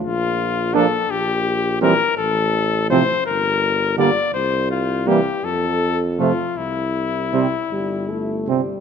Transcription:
<<
  \new Staff \with { instrumentName = "Cornet" } { \time 6/8 \key c \mixolydian \tempo 4. = 55 f'4 a'8 g'4 bes'8 | a'4 c''8 bes'4 d''8 | c''8 f'8 g'8 a'4 f'8 | e'2~ e'8 r8 | }
  \new Staff \with { instrumentName = "Flugelhorn" } { \time 6/8 \key c \mixolydian r4 d'16 r4 r16 c'16 r16 | r4 c'16 r4 r16 bes16 r16 | r4 bes16 r4 r16 a16 r16 | r4 c'16 r4 r16 c'16 r16 | }
  \new Staff \with { instrumentName = "French horn" } { \clef bass \time 6/8 \key c \mixolydian r4 bes16 r4 r16 g16 r16 | r4 f16 r4 r16 g16 r16 | r4 g16 r4 r16 f16 r16 | r4 g16 r16 g8 a8 g8 | }
  \new Staff \with { instrumentName = "Trombone" } { \clef bass \time 6/8 \key c \mixolydian r4 f16 r4 r16 e16 r16 | r4 c16 r4 r16 d16 r16 | r4 e16 r4 r16 c16 r16 | r4 c16 r4 r16 c16 r16 | }
  \new Staff \with { instrumentName = "Bass trombone" } { \clef bass \time 6/8 \key c \mixolydian bes,,4. bes,,4. | a,,4. g,,4. | c,4. f,4. | c,4. g,,4. | }
>>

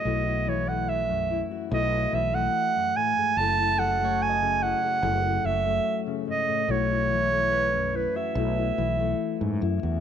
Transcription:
<<
  \new Staff \with { instrumentName = "Clarinet" } { \time 4/4 \key b \mixolydian \tempo 4 = 72 dis''8 cis''16 fis''16 e''8. r16 dis''8 e''16 fis''8. gis''8 | a''8 fis''8 gis''8 fis''4 e''8. r16 dis''8 | cis''4. b'16 e''4.~ e''16 r8 | }
  \new Staff \with { instrumentName = "Harp" } { \time 4/4 \key b \mixolydian r1 | r8 a'16 cis''16 dis''4. r4. | r4 b'4. r4. | }
  \new Staff \with { instrumentName = "Steel-string acoustic guitar" } { \time 4/4 \key b \mixolydian << { <a e' fis'>16 e'8 a8. e'16 fis'16 <a e' fis'>16 e'8 a4~ a16 | <a e' a'>16 e'8 a8. e'16 a'16 <a e' a'>16 e'8 a4~ a16 | <a e' fis'>16 e'8 a8. e'16 fis'16 <a e' fis'>16 e'8 a8. e'16 fis'16 | } \\ { b,8 e8. fis,8. b,8 e8. fis,16 a,16 gis,16 | fis,8 fis8. cis8. fis,8 fis8. cis16 gis,16 a,16 | b,8 e8. fis,8. b,8 e8. fis,8. | } >> }
  \new Staff \with { instrumentName = "Fretless electric bass" } { \clef bass \time 4/4 \key b \mixolydian b,,2 b,,8 b,,8 r4 | fis,,2 fis,,8 fis,,8 r4 | b,,2 b,,8 b,,8 r16 gis,16 fis,16 e,16 | }
>>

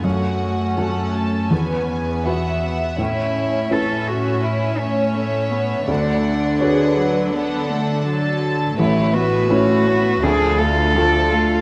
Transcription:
<<
  \new Staff \with { instrumentName = "Violin section" } { \time 4/4 \key a \major \tempo 4 = 83 fis''4 fis''8 a''8 gis''4 fis''8 fis''8 | e''4 e''2 e''4 | fis''4 fis''4 fis''4 a''4 | b'8 e''8 b'8 e''8 d''8 f''8 d''8 f''8 | }
  \new Staff \with { instrumentName = "Violin section" } { \time 4/4 \key a \major fis'4 a'4 b'4 e''4 | cis''2 cis''2 | d''4 b'4 a'4 a'4 | cis''8 b'8 cis''8 b'8 a'8 f'8 a'8 f'8 | }
  \new Staff \with { instrumentName = "Cello" } { \time 4/4 \key a \major cis'2.~ cis'8 r8 | e'4 a'8 fis'8 e'8 cis'4. | d'2.~ d'8 r8 | e'8 fis'4. gis'8 a'4. | }
  \new Staff \with { instrumentName = "Felt piano" } { \time 4/4 \key a \major fis,4 <a fis' a'>4 e,4 <b fis' b'>4 | a,4 <cis' e' b'>2. | d,4 <fis' a' cis''>2. | a,,4 <cis' e' b'>4 d,4 <a f' a'>4 | }
  \new Staff \with { instrumentName = "Viola section" } { \time 4/4 \key a \major a4 a4 b8 b4. | cis'4 cis'2 a8 b8 | a4 gis'8 fis8 b8 a8 fis4 | a8 b8 a8 b8 f8 a8 f8 a8 | }
  \new Staff \with { instrumentName = "Cello section" } { \clef bass \time 4/4 \key a \major fis,2 e,2 | a,1 | d1 | a,2 d,2 | }
>>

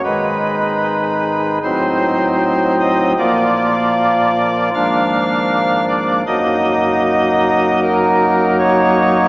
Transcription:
<<
  \new Staff \with { instrumentName = "Pipe organ" } { \time 4/4 \key ees \minor \tempo 4 = 77 ces''2 c''4. ees''8 | d''2 f''4. d''8 | ees''4 ees''4 bes'4 des''4 | }
  \new Staff \with { instrumentName = "Pipe organ" } { \clef bass \time 4/4 \key ees \minor <aes,, aes, ees aes ees'>2 <a,, a, fis c' ees'>2 | <bes,, bes, f bes f'>2 <aes,, aes, f bes d'>2 | <ges,, ges, ges bes ees'>1 | }
>>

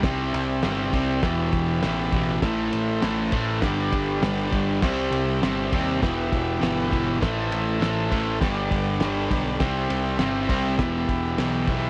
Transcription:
<<
  \new Staff \with { instrumentName = "Transistor combo organ" } { \time 4/4 \key e \minor \tempo 4 = 100 <g' c'' e''>2 <g' b' e''>2 | <a' c'' e''>2 <g' b' d''>2 | <g' c'' e''>2 <g' b' e''>2 | <a' c'' e''>2 <g' b' d''>2 |
<g' c'' e''>2 <g' b' e''>2 | }
  \new Staff \with { instrumentName = "Overdriven electric guitar" } { \clef bass \time 4/4 \key e \minor <c g c'>4 <c g c'>8 <c g c'>8 <e, b, e>4 <e, b, e>8 <e, b, e>8 | <a, e a>4 <a, e a>8 <a, e a>8 <g, d g>4 <g, d g>8 <g, d g>8 | <c g c'>4 <c g c'>8 <c g c'>8 <e, b, e>4 <e, b, e>8 <e, b, e>8 | <a, e a>4 <a, e a>8 <a, e a>8 <g, d g>4 <g, d g>8 <g, d g>8 |
<c g c'>4 <c g c'>8 <c g c'>8 <e, b, e>4 <e, b, e>8 <e, b, e>8 | }
  \new Staff \with { instrumentName = "Picked electric bass" } { \clef bass \time 4/4 \key e \minor c,8 c,8 g,,8 c,8 e,,8 e,,8 a,,4 | a,,8 a,,8 a,,8 a,,8 g,,8 g,,8 g,,8 g,,8 | c,8 c,8 g,,8 dis,8 e,,8 e,,8 g,,4 | a,,8 a,,8 a,,8 a,,8 g,,8 g,,8 g,,8 b,,8 |
c,8 c,8 g,,8 c,8 e,,8 e,,8 b,,4 | }
  \new DrumStaff \with { instrumentName = "Drums" } \drummode { \time 4/4 <bd cymr sn>8 cymr8 <cymr sn>8 <bd cymr>8 <bd cymr sn>8 <bd cymr>8 <cymr sn>8 <bd cymr>8 | <bd cymr sn>8 cymr8 <cymr sn>8 <bd cymr>8 <bd cymr sn>8 <bd cymr>8 <cymr sn>8 <bd cymr>8 | <cymc bd sn>8 cymr8 <cymr sn>8 <bd cymr>8 <bd cymr sn>8 <bd cymr>8 <cymr sn>8 <bd cymr>8 | <bd cymr sn>8 cymr8 <cymr sn>8 <bd cymr>8 <bd cymr sn>8 <bd cymr>8 <cymr sn>8 <bd cymr>8 |
<bd cymr sn>8 cymr8 <cymr sn>8 <bd cymr>8 <bd cymr sn>8 <bd cymr>8 <cymr sn>8 <bd cymr>8 | }
>>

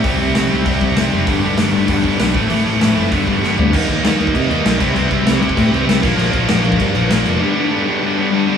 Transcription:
<<
  \new Staff \with { instrumentName = "Distorted electric guitar" } { \clef bass \time 4/4 \key g \mixolydian \tempo 4 = 196 <c g c' e'>2 <c g c' e'>2 | <g, d g b d'>2 <g, d g b d'>4. <a, e a c' e'>8~ | <a, e a c' e'>4. <a, e a c' e'>8 <g, d g b d'>2 | <ees g bes ees'>8 <ees g bes ees'>8 <ees g bes ees'>8 <ees g bes ees'>8 <ees g bes ees'>8 <ees g bes ees'>8 <ees g bes ees'>8 <c g c' e'>8 |
<c g c' e'>8 <c g c' e'>8 <c g c' e'>8 <c g c' e'>8 <c g c' e'>8 <c g c' e'>8 <c g c' e'>8 <bes, d f bes d'>8 | <bes, d f bes d'>8 <bes, d f bes d'>8 <bes, d f bes d'>8 <bes, d f bes d'>8 <bes, d f bes d'>8 <bes, d f bes d'>8 <bes, d f bes d'>8 <bes, d f bes d'>8 | <g, d g b d'>8 <g, d g b d'>8 <g, d g b d'>8 <g, d g b d'>8 <g, d g b d'>8 <g, d g b d'>8 <g, d g b d'>8 <g, d g b d'>8 | }
  \new Staff \with { instrumentName = "Distorted electric guitar" } { \clef bass \time 4/4 \key g \mixolydian <c g c'>8 <c g c'>8 <c g c'>8 <c g c'>8 <c g c'>8 <c g c'>8 <c g c'>8 <c g c'>8 | <g, d g>8 <g, d g>8 <g, d g>8 <g, d g>8 <g, d g>8 <g, d g>8 <g, d g>8 <a, e a>8 | <a, e a>8 <a, e a>8 <a, e a>8 <a, e a>8 <g, d g>8 <g, d g>8 <g, d g>8 <g, d g>8 | <ees bes ees'>8 <ees bes ees'>8 <ees bes ees'>8 <ees bes ees'>8 <ees bes ees'>8 <ees bes ees'>8 <ees bes ees'>8 <c g c'>8 |
<c g c'>8 <c g c'>8 <c g c'>8 <c g c'>8 <c g c'>8 <c g c'>8 <c g c'>8 <bes, f bes>8 | <bes, f bes>8 <bes, f bes>8 <bes, f bes>8 <bes, f bes>8 <bes, f bes>8 <bes, f bes>8 <bes, f bes>8 <bes, f bes>8 | <g, d g>8 <g, d g>8 <g, d g>8 <g, d g>8 <g, d g>8 <g, d g>8 <g, d g>8 <g, d g>8 | }
  \new Staff \with { instrumentName = "Distorted electric guitar" } { \clef bass \time 4/4 \key g \mixolydian <c g c'>8 <c g c'>8 <c g c'>8 <c g c'>8 <c g c'>8 <c g c'>8 <c g c'>8 <c g c'>8 | <g, d g>8 <g, d g>8 <g, d g>8 <g, d g>8 <g, d g>8 <g, d g>8 <g, d g>8 <a, e a>8 | <a, e a>8 <a, e a>8 <a, e a>8 <a, e a>8 <g, d g>8 <g, d g>8 <g, d g>8 <g, d g>8 | <ees bes ees'>8 <ees bes ees'>8 <ees bes ees'>8 <ees bes ees'>8 <ees bes ees'>8 <ees bes ees'>8 <ees bes ees'>8 <c g c'>8 |
<c g c'>8 <c g c'>8 <c g c'>8 <c g c'>8 <c g c'>8 <c g c'>8 <c g c'>8 <bes, f bes>8 | <bes, f bes>8 <bes, f bes>8 <bes, f bes>8 <bes, f bes>8 <bes, f bes>8 <bes, f bes>8 <bes, f bes>8 <bes, f bes>8 | <g, d g>8 <g, d g>8 <g, d g>8 <g, d g>8 <g, d g>8 <g, d g>8 <g, d g>8 <g, d g>8 | }
  \new Staff \with { instrumentName = "Picked electric bass" } { \clef bass \time 4/4 \key g \mixolydian c,8 c,8 c,8 c,8 c,8 c,8 c,8 f,,8 | g,,8 g,,8 g,,8 g,,8 g,,8 g,,8 b,,8 a,,8 | a,,8 a,,8 a,,8 fis,,8 g,,8 g,,8 g,,8 d,8 | ees,8 ees,8 ees,8 ees,8 c8 ees,8 b,,8 c,8 |
c,8 c,8 c,8 c,8 a,8 c,8 c,8 bes,,8 | bes,,8 bes,,8 bes,,8 bes,,8 g,8 bes,,8 bes,,8 f,,8 | r1 | }
  \new DrumStaff \with { instrumentName = "Drums" } \drummode { \time 4/4 <hho bd>4 <hho sn>4 <hho bd>8 bd8 <hho sn>4 | <hho bd>4 <hho sn>4 <hho bd>8 bd8 <hho sn>8 bd8 | hho4 <hho sn>4 <hho bd>8 bd8 sn8 tomfh8 | <cymc bd>8 <cymc bd>8 <cymc sn>8 cymc16 bd16 <cymc bd>8 cymc8 <cymc sn>8 <cymc bd>8 |
cymc8 <cymc bd>8 <cymc sn>8 cymc16 bd16 <cymc bd>8 cymc8 <cymc sn>8 <cymc bd>8 | cymc8 <cymc bd>8 <cymc sn>8 cymc16 bd16 <cymc bd>8 cymc8 <cymc sn>8 cymc8 | r4 r4 r4 r4 | }
>>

